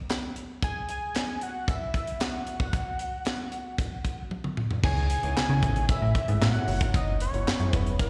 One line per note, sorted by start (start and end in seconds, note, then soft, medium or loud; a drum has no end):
0.10 snare loud
0.10 clap medium
0.10 closed hi-hat medium
0.36 closed hi-hat medium
0.62 0.88 G#5 loud
0.62 kick loud
0.62 closed hi-hat medium
0.89 1.44 G#5 loud
0.89 closed hi-hat medium
1.15 snare loud
1.15 clap medium
1.15 closed hi-hat medium
1.41 1.70 F#5 loud
1.41 closed hi-hat medium
1.68 2.23 E5 medium
1.68 kick loud
1.68 closed hi-hat medium
1.94 kick medium
1.94 closed hi-hat medium
2.07 closed hi-hat medium
2.20 4.32 F#5 medium
2.20 snare loud
2.20 clap medium
2.20 closed hi-hat medium
2.47 closed hi-hat medium
2.60 kick loud
2.73 kick loud
2.73 closed hi-hat medium
2.99 closed hi-hat medium
3.25 snare loud
3.25 clap medium
3.25 closed hi-hat medium
3.52 closed hi-hat medium
3.78 kick loud
3.78 closed hi-hat medium
4.05 kick medium
4.05 closed hi-hat medium
4.31 high tom medium
4.44 mid tom medium
4.57 mid tom medium
4.71 floor tom medium
4.83 5.17 C#2 loud
4.83 5.03 B3 medium
4.83 5.04 D#4 medium
4.83 5.04 E4 medium
4.83 5.04 G#4 medium
4.83 5.04 C#5 medium
4.83 5.08 G#5 loud
4.83 kick loud
4.83 crash loud
4.97 closed hi-hat soft
5.10 5.91 G#5 loud
5.10 closed hi-hat loud
5.23 5.34 C#2 medium
5.23 5.36 B3 medium
5.23 5.36 D#4 medium
5.23 5.36 E4 medium
5.23 5.37 G#4 medium
5.23 5.37 C#5 medium
5.23 closed hi-hat medium
5.36 5.42 C#3 medium
5.36 snare loud
5.36 clap medium
5.49 5.61 C#3 loud
5.49 5.62 B3 medium
5.49 5.63 D#4 medium
5.49 5.61 E4 medium
5.49 5.62 G#4 medium
5.49 5.63 C#5 medium
5.62 5.96 A1 medium
5.62 6.15 A3 medium
5.62 6.15 C#4 medium
5.62 6.15 E4 medium
5.62 6.15 G#4 medium
5.62 5.69 C5 medium
5.62 kick medium
5.62 closed hi-hat medium
5.69 6.19 C#5 medium
5.76 closed hi-hat medium
5.89 6.42 E5 loud
5.89 kick loud
5.89 closed hi-hat medium
6.02 6.13 A2 loud
6.15 kick medium
6.15 closed hi-hat medium
6.28 6.39 G#2 loud
6.28 6.42 A3 medium
6.28 6.42 C#4 medium
6.28 6.42 E4 medium
6.28 6.42 G#4 medium
6.28 6.42 B4 medium
6.28 closed hi-hat medium
6.41 6.53 A2 loud
6.41 6.97 F#5 loud
6.41 snare loud
6.41 clap loud
6.54 6.68 A3 medium
6.54 6.66 C#4 medium
6.54 6.66 E4 medium
6.54 6.68 G#4 medium
6.54 6.67 C#5 medium
6.54 closed hi-hat soft
6.68 6.79 F#1 loud
6.68 7.20 A#3 medium
6.68 7.20 C#4 medium
6.68 7.20 E4 medium
6.68 7.21 F#4 medium
6.68 7.21 C#5 medium
6.68 open hi-hat medium
6.80 6.92 G1 medium
6.80 kick loud
6.80 closed hi-hat medium
6.94 7.28 F#1 loud
6.94 7.21 D#5 loud
6.94 kick loud
6.94 closed hi-hat loud
7.20 7.75 C#5 medium
7.20 closed hi-hat loud
7.33 7.45 F#1 medium
7.33 7.47 A#3 medium
7.33 7.47 C#4 medium
7.33 7.47 E4 medium
7.33 7.47 F#4 medium
7.33 7.47 C#5 medium
7.33 closed hi-hat medium
7.47 7.52 F#2 medium
7.47 snare loud
7.47 clap medium
7.59 7.71 F#2 loud
7.59 7.73 A#3 medium
7.59 7.71 C#4 medium
7.59 7.72 E4 medium
7.59 7.73 F#4 medium
7.59 7.72 G#4 medium
7.59 closed hi-hat soft
7.72 8.07 E1 medium
7.72 8.10 B3 medium
7.72 8.10 C#4 medium
7.72 8.10 E4 medium
7.72 8.10 G#4 medium
7.72 7.96 B4 medium
7.72 8.10 C#5 medium
7.72 kick medium
7.72 closed hi-hat medium
7.87 closed hi-hat medium
7.99 8.10 B4 medium
7.99 kick loud
7.99 closed hi-hat medium